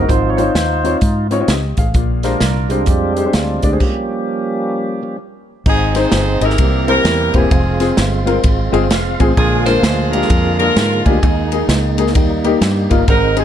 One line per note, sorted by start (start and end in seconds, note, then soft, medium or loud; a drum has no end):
0.01 0.09 G#3 medium
0.01 0.09 D#4 medium
0.01 0.10 F#4 medium
0.01 0.10 A#4 medium
0.09 0.49 G#1 loud
0.09 0.81 G#2 medium
0.09 0.43 F3 medium
0.09 0.44 C4 soft
0.09 0.38 D#4 medium
0.09 0.38 F4 medium
0.09 0.30 C5 loud
0.09 kick loud
0.09 closed hi-hat medium
0.30 0.39 C#5 medium
0.37 0.49 C4 medium
0.37 0.49 D#4 medium
0.37 1.27 D#4 medium
0.37 0.49 F4 medium
0.37 1.28 F4 medium
0.37 0.97 C5 loud
0.37 0.50 C#5 medium
0.37 closed hi-hat medium
0.55 0.94 D#2 medium
0.55 snare loud
0.55 closed hi-hat medium
0.84 0.95 C4 medium
0.84 0.96 D#4 medium
0.84 0.96 F4 medium
0.84 0.96 C#5 medium
0.84 closed hi-hat medium
1.01 1.41 G#2 medium
1.01 kick loud
1.01 closed hi-hat medium
1.31 1.36 C4 medium
1.31 1.37 D#4 medium
1.31 1.37 F4 medium
1.31 1.37 C#5 medium
1.31 closed hi-hat medium
1.40 1.52 C4 medium
1.40 1.53 D#4 medium
1.40 1.53 F4 medium
1.40 1.49 C#5 medium
1.48 1.73 C#2 medium
1.48 1.77 G4 medium
1.48 1.76 D#5 medium
1.48 snare loud
1.48 closed hi-hat medium
1.77 1.92 A1 medium
1.77 2.22 G#4 medium
1.77 2.22 F5 medium
1.77 kick medium
1.77 closed hi-hat medium
1.94 2.34 A#1 loud
1.94 2.67 A#2 medium
1.94 kick loud
1.94 closed hi-hat medium
2.23 2.35 G#3 medium
2.23 2.35 D4 medium
2.23 2.69 D4 medium
2.23 3.13 F4 medium
2.23 2.35 G4 medium
2.23 2.89 A#4 loud
2.23 2.35 C5 medium
2.23 snare soft
2.23 closed hi-hat medium
2.40 2.87 C2 loud
2.40 snare loud
2.40 closed hi-hat medium
2.69 3.76 G3 medium
2.69 3.34 G#3 soft
2.69 2.81 G#3 medium
2.69 2.88 C4 soft
2.69 2.81 D4 medium
2.69 2.88 D4 medium
2.69 2.81 G4 medium
2.69 2.82 C5 medium
2.69 closed hi-hat medium
2.86 3.27 F2 medium
2.86 3.77 C4 medium
2.86 3.35 D4 medium
2.86 3.36 G4 medium
2.86 kick medium
2.86 closed hi-hat medium
3.16 3.22 G#3 medium
3.16 3.22 D4 medium
3.16 3.23 G4 medium
3.16 3.23 C5 medium
3.16 closed hi-hat medium
3.25 3.38 G#3 medium
3.25 3.38 D4 medium
3.25 3.38 G4 medium
3.25 3.38 C5 medium
3.33 3.59 D2 medium
3.33 3.78 G#3 medium
3.33 3.78 D4 medium
3.33 3.70 F4 medium
3.33 snare loud
3.33 closed hi-hat medium
3.62 3.78 D2 medium
3.62 3.68 G#3 medium
3.62 3.69 D4 medium
3.62 3.69 G4 medium
3.62 3.69 D5 medium
3.62 kick medium
3.62 closed hi-hat medium
3.71 3.80 G#3 medium
3.71 3.80 D4 medium
3.71 3.81 G4 medium
3.71 3.81 G#4 medium
3.71 3.81 C5 medium
3.80 5.02 F3 medium
3.80 5.02 G3 medium
3.80 5.17 A#3 medium
3.80 5.02 C#4 medium
3.80 5.16 G4 medium
3.80 kick loud
3.80 crash medium
5.03 5.18 F3 soft
5.03 5.18 G3 soft
5.03 5.18 C#4 medium
5.66 6.05 G#1 loud
5.66 6.38 G#2 medium
5.66 6.57 G#3 medium
5.66 6.57 C4 medium
5.66 6.55 C4 medium
5.66 6.57 D#4 medium
5.66 5.94 D#4 medium
5.66 5.94 G#4 loud
5.66 kick loud
5.66 crash medium
5.95 6.06 D#4 medium
5.95 6.55 D#4 medium
5.95 6.55 G#4 medium
5.95 6.06 G#4 medium
5.95 6.42 C5 loud
5.95 6.07 C5 medium
5.95 snare soft
5.95 ride bell medium
6.12 6.37 G1 loud
6.12 snare loud
6.12 ride bell medium
6.41 6.56 G#1 medium
6.41 6.52 D#4 medium
6.41 6.88 E4 medium
6.41 6.87 G4 medium
6.41 6.53 G#4 medium
6.41 6.87 A#4 loud
6.41 6.53 D#5 medium
6.41 ride bell medium
6.50 snare soft
6.58 6.98 C2 loud
6.58 7.30 C3 medium
6.58 7.51 E3 medium
6.58 7.50 G3 medium
6.58 7.51 A#3 medium
6.58 7.51 C4 medium
6.58 7.50 G4 medium
6.58 kick loud
6.58 ride bell medium
6.88 6.99 A#3 medium
6.88 6.99 C4 medium
6.88 6.99 E4 medium
6.88 7.48 E4 medium
6.88 6.99 G4 medium
6.88 7.48 G4 medium
6.88 7.31 A#4 loud
6.88 6.99 C5 medium
6.88 ride bell medium
7.04 7.30 E2 medium
7.04 snare loud
7.04 ride bell medium
7.34 7.49 E1 medium
7.34 7.45 A#3 medium
7.34 7.45 C4 medium
7.34 8.24 C4 medium
7.34 7.45 E4 medium
7.34 8.24 F4 medium
7.34 7.46 G4 medium
7.34 7.99 G#4 medium
7.34 7.46 C5 medium
7.34 kick medium
7.34 ride bell medium
7.51 7.91 F1 loud
7.51 9.34 G#3 medium
7.51 9.34 C4 medium
7.51 9.33 F4 medium
7.51 kick loud
7.51 ride bell medium
7.80 7.91 C4 medium
7.80 7.92 F4 medium
7.80 7.92 G#4 medium
7.80 snare soft
7.80 ride bell medium
7.97 8.37 G1 loud
7.97 snare loud
7.97 ride bell medium
8.26 8.38 C4 medium
8.26 8.38 F4 medium
8.26 8.38 A#4 medium
8.26 ride bell medium
8.44 8.69 G#1 medium
8.44 kick loud
8.44 ride bell medium
8.72 8.90 G1 medium
8.72 8.84 C4 loud
8.72 8.84 F4 medium
8.72 8.84 G#4 loud
8.72 8.89 D#5 medium
8.72 ride bell medium
8.90 9.15 F1 medium
8.90 9.18 F5 medium
8.90 9.19 F5 medium
8.90 snare loud
8.90 ride bell medium
9.20 9.35 A1 medium
9.20 9.31 C4 medium
9.20 9.31 F4 medium
9.20 9.31 G#4 loud
9.20 9.65 G#4 medium
9.20 9.36 G#5 medium
9.20 kick medium
9.20 ride bell medium
9.37 9.77 A#1 loud
9.37 10.09 A#2 medium
9.37 11.19 D3 medium
9.37 11.19 F3 medium
9.37 11.19 G#3 medium
9.37 11.19 A#3 medium
9.37 10.11 D4 medium
9.37 11.19 F4 medium
9.37 9.66 F4 medium
9.37 9.64 G#4 loud
9.37 kick loud
9.37 ride bell medium
9.66 9.77 G#3 medium
9.66 9.77 A#3 medium
9.66 9.78 D4 medium
9.66 10.12 F4 medium
9.66 9.78 F4 medium
9.66 10.55 G#4 medium
9.66 9.78 A#4 medium
9.66 10.09 C5 loud
9.66 snare soft
9.66 ride bell medium
9.83 10.23 D2 loud
9.83 snare loud
9.83 ride bell medium
10.10 10.24 G#3 medium
10.10 10.24 A#3 medium
10.10 10.58 D4 medium
10.10 10.24 D4 medium
10.10 10.58 F4 medium
10.10 10.24 F4 medium
10.10 10.24 G4 medium
10.10 10.56 A#4 loud
10.10 ride bell medium
10.22 snare soft
10.30 10.69 F2 medium
10.30 kick loud
10.30 ride bell medium
10.57 10.70 G#3 medium
10.57 10.70 A#3 medium
10.57 11.19 D4 medium
10.57 10.71 D4 medium
10.57 11.19 F4 medium
10.57 10.71 F4 medium
10.57 10.71 G#4 medium
10.57 11.01 A#4 loud
10.57 ride bell medium
10.76 11.01 G#2 medium
10.76 snare loud
10.76 ride bell medium
11.05 11.20 D2 medium
11.05 11.17 G#3 medium
11.05 11.17 A#3 medium
11.05 11.17 D4 medium
11.05 11.95 D#4 medium
11.05 11.17 F4 medium
11.05 11.17 G4 medium
11.05 11.65 G#4 medium
11.05 kick medium
11.05 ride bell medium
11.22 11.62 D#2 loud
11.22 11.95 D#3 medium
11.22 12.14 G#3 medium
11.22 12.14 A#3 medium
11.22 12.14 D#4 medium
11.22 kick loud
11.22 ride bell medium
11.52 11.63 A#3 medium
11.52 11.63 D#4 medium
11.52 11.64 G#4 medium
11.52 ride bell medium
11.68 12.15 C#2 loud
11.68 snare loud
11.68 ride bell medium
11.98 12.09 A#3 medium
11.98 12.09 D#4 medium
11.98 12.10 G#4 medium
11.98 ride bell medium
12.07 snare soft
12.15 12.55 D#2 loud
12.15 12.87 D#3 medium
12.15 13.07 G3 medium
12.15 13.07 A#3 medium
12.15 13.07 D#4 medium
12.15 kick loud
12.15 ride bell medium
12.44 12.56 A#3 medium
12.44 12.56 D#4 medium
12.44 12.56 G4 loud
12.44 ride bell medium
12.61 12.86 G2 medium
12.61 12.90 G4 medium
12.61 snare loud
12.61 ride bell medium
12.90 13.06 G1 medium
12.90 13.01 A#3 medium
12.90 13.02 D#4 medium
12.90 13.02 F4 loud
12.90 13.36 A#4 medium
12.90 kick medium
12.90 ride bell medium
13.08 13.45 G#1 loud
13.08 13.45 G#2 medium
13.08 13.45 G#3 medium
13.08 13.45 C4 medium
13.08 13.15 D4 medium
13.08 13.37 D#4 medium
13.08 13.36 A#4 medium
13.08 kick loud
13.08 ride bell medium
13.15 13.45 D#4 medium
13.36 13.45 C4 medium
13.36 13.45 D#4 medium
13.36 13.45 G#4 medium
13.36 13.45 G#4 loud
13.36 ride bell medium